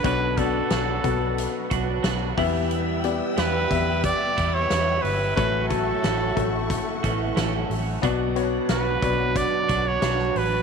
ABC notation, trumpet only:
X:1
M:4/4
L:1/16
Q:1/4=90
K:Bm
V:1 name="Trumpet"
B2 A8 z6 | z4 B4 d3 c3 B2 | B2 A8 z6 | z4 B4 d3 c3 B2 |]